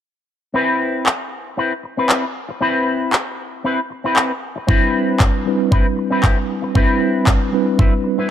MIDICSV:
0, 0, Header, 1, 5, 480
1, 0, Start_track
1, 0, Key_signature, 0, "major"
1, 0, Tempo, 517241
1, 510, Time_signature, 4, 2, 24, 8
1, 7705, End_track
2, 0, Start_track
2, 0, Title_t, "Clean electric guitar"
2, 0, Program_c, 0, 27
2, 498, Note_on_c, 0, 60, 96
2, 508, Note_on_c, 0, 64, 86
2, 517, Note_on_c, 0, 71, 107
2, 984, Note_off_c, 0, 60, 0
2, 989, Note_off_c, 0, 64, 0
2, 994, Note_off_c, 0, 71, 0
2, 1459, Note_on_c, 0, 60, 75
2, 1468, Note_on_c, 0, 64, 68
2, 1476, Note_on_c, 0, 71, 83
2, 1594, Note_off_c, 0, 60, 0
2, 1599, Note_off_c, 0, 64, 0
2, 1603, Note_off_c, 0, 71, 0
2, 1831, Note_on_c, 0, 60, 78
2, 1839, Note_on_c, 0, 64, 71
2, 1848, Note_on_c, 0, 71, 85
2, 2076, Note_off_c, 0, 60, 0
2, 2080, Note_off_c, 0, 64, 0
2, 2084, Note_off_c, 0, 71, 0
2, 2418, Note_on_c, 0, 60, 96
2, 2427, Note_on_c, 0, 64, 91
2, 2434, Note_on_c, 0, 71, 107
2, 2904, Note_off_c, 0, 60, 0
2, 2909, Note_off_c, 0, 64, 0
2, 2912, Note_off_c, 0, 71, 0
2, 3380, Note_on_c, 0, 60, 77
2, 3387, Note_on_c, 0, 64, 70
2, 3397, Note_on_c, 0, 71, 83
2, 3515, Note_off_c, 0, 60, 0
2, 3518, Note_off_c, 0, 64, 0
2, 3524, Note_off_c, 0, 71, 0
2, 3750, Note_on_c, 0, 60, 76
2, 3758, Note_on_c, 0, 64, 70
2, 3767, Note_on_c, 0, 71, 85
2, 3995, Note_off_c, 0, 60, 0
2, 3999, Note_off_c, 0, 64, 0
2, 4004, Note_off_c, 0, 71, 0
2, 4335, Note_on_c, 0, 60, 99
2, 4344, Note_on_c, 0, 64, 89
2, 4352, Note_on_c, 0, 71, 109
2, 4822, Note_off_c, 0, 60, 0
2, 4827, Note_off_c, 0, 64, 0
2, 4831, Note_off_c, 0, 71, 0
2, 5296, Note_on_c, 0, 60, 78
2, 5306, Note_on_c, 0, 64, 71
2, 5313, Note_on_c, 0, 71, 85
2, 5433, Note_off_c, 0, 60, 0
2, 5438, Note_off_c, 0, 64, 0
2, 5441, Note_off_c, 0, 71, 0
2, 5664, Note_on_c, 0, 60, 80
2, 5672, Note_on_c, 0, 64, 72
2, 5682, Note_on_c, 0, 71, 88
2, 5912, Note_off_c, 0, 60, 0
2, 5916, Note_off_c, 0, 64, 0
2, 5921, Note_off_c, 0, 71, 0
2, 6260, Note_on_c, 0, 60, 100
2, 6269, Note_on_c, 0, 64, 91
2, 6277, Note_on_c, 0, 71, 113
2, 6745, Note_off_c, 0, 60, 0
2, 6750, Note_off_c, 0, 64, 0
2, 6753, Note_off_c, 0, 71, 0
2, 7220, Note_on_c, 0, 60, 81
2, 7229, Note_on_c, 0, 64, 75
2, 7238, Note_on_c, 0, 71, 87
2, 7355, Note_off_c, 0, 60, 0
2, 7359, Note_off_c, 0, 64, 0
2, 7364, Note_off_c, 0, 71, 0
2, 7589, Note_on_c, 0, 60, 79
2, 7597, Note_on_c, 0, 64, 75
2, 7606, Note_on_c, 0, 71, 88
2, 7705, Note_off_c, 0, 60, 0
2, 7705, Note_off_c, 0, 64, 0
2, 7705, Note_off_c, 0, 71, 0
2, 7705, End_track
3, 0, Start_track
3, 0, Title_t, "Tine electric piano"
3, 0, Program_c, 1, 4
3, 4344, Note_on_c, 1, 55, 75
3, 4349, Note_on_c, 1, 60, 69
3, 4351, Note_on_c, 1, 62, 72
3, 4359, Note_on_c, 1, 64, 70
3, 4365, Note_on_c, 1, 71, 86
3, 5040, Note_off_c, 1, 55, 0
3, 5043, Note_off_c, 1, 60, 0
3, 5044, Note_off_c, 1, 62, 0
3, 5048, Note_off_c, 1, 64, 0
3, 5051, Note_off_c, 1, 71, 0
3, 5065, Note_on_c, 1, 55, 78
3, 5069, Note_on_c, 1, 60, 69
3, 5074, Note_on_c, 1, 62, 72
3, 5078, Note_on_c, 1, 64, 72
3, 5081, Note_on_c, 1, 71, 83
3, 6241, Note_off_c, 1, 55, 0
3, 6243, Note_off_c, 1, 60, 0
3, 6246, Note_off_c, 1, 62, 0
3, 6248, Note_off_c, 1, 64, 0
3, 6249, Note_off_c, 1, 71, 0
3, 6262, Note_on_c, 1, 55, 76
3, 6266, Note_on_c, 1, 60, 70
3, 6270, Note_on_c, 1, 62, 71
3, 6275, Note_on_c, 1, 64, 73
3, 6279, Note_on_c, 1, 71, 88
3, 6960, Note_off_c, 1, 55, 0
3, 6962, Note_off_c, 1, 60, 0
3, 6964, Note_off_c, 1, 62, 0
3, 6966, Note_off_c, 1, 64, 0
3, 6968, Note_off_c, 1, 71, 0
3, 6981, Note_on_c, 1, 55, 76
3, 6987, Note_on_c, 1, 60, 72
3, 6991, Note_on_c, 1, 62, 72
3, 6995, Note_on_c, 1, 64, 70
3, 6998, Note_on_c, 1, 71, 88
3, 7705, Note_off_c, 1, 55, 0
3, 7705, Note_off_c, 1, 60, 0
3, 7705, Note_off_c, 1, 62, 0
3, 7705, Note_off_c, 1, 64, 0
3, 7705, Note_off_c, 1, 71, 0
3, 7705, End_track
4, 0, Start_track
4, 0, Title_t, "Muted clean electric guitar strokes"
4, 1701, Note_on_c, 9, 29, 29
4, 1794, Note_off_c, 9, 29, 0
4, 2306, Note_on_c, 9, 29, 74
4, 2399, Note_off_c, 9, 29, 0
4, 3621, Note_on_c, 9, 29, 29
4, 3713, Note_off_c, 9, 29, 0
4, 4229, Note_on_c, 9, 29, 79
4, 4322, Note_off_c, 9, 29, 0
4, 5537, Note_on_c, 9, 29, 30
4, 5630, Note_off_c, 9, 29, 0
4, 6144, Note_on_c, 9, 29, 82
4, 6237, Note_off_c, 9, 29, 0
4, 7461, Note_on_c, 9, 29, 30
4, 7554, Note_off_c, 9, 29, 0
4, 7705, End_track
5, 0, Start_track
5, 0, Title_t, "Drums"
5, 985, Note_on_c, 9, 39, 110
5, 1078, Note_off_c, 9, 39, 0
5, 1942, Note_on_c, 9, 39, 104
5, 2035, Note_off_c, 9, 39, 0
5, 2901, Note_on_c, 9, 39, 108
5, 2994, Note_off_c, 9, 39, 0
5, 3862, Note_on_c, 9, 39, 108
5, 3955, Note_off_c, 9, 39, 0
5, 4348, Note_on_c, 9, 36, 108
5, 4441, Note_off_c, 9, 36, 0
5, 4823, Note_on_c, 9, 39, 111
5, 4828, Note_on_c, 9, 36, 109
5, 4915, Note_off_c, 9, 39, 0
5, 4921, Note_off_c, 9, 36, 0
5, 5308, Note_on_c, 9, 36, 116
5, 5400, Note_off_c, 9, 36, 0
5, 5782, Note_on_c, 9, 39, 111
5, 5788, Note_on_c, 9, 36, 112
5, 5875, Note_off_c, 9, 39, 0
5, 5881, Note_off_c, 9, 36, 0
5, 6267, Note_on_c, 9, 36, 106
5, 6360, Note_off_c, 9, 36, 0
5, 6742, Note_on_c, 9, 39, 107
5, 6748, Note_on_c, 9, 36, 112
5, 6835, Note_off_c, 9, 39, 0
5, 6841, Note_off_c, 9, 36, 0
5, 7229, Note_on_c, 9, 36, 116
5, 7322, Note_off_c, 9, 36, 0
5, 7705, End_track
0, 0, End_of_file